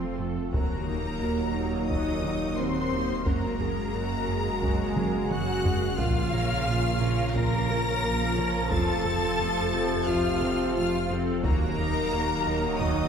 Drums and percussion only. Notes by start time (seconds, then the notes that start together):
0.53 taiko
0.88 taiko mid
1.90 taiko
3.26 taiko
3.61 taiko mid
4.62 taiko
4.96 taiko mid
5.31 taiko mid
5.65 taiko low
5.99 taiko
6.33 taiko mid
7.35 taiko
8.71 taiko
9.05 taiko mid
10.08 taiko
11.44 taiko
11.78 taiko mid
12.80 taiko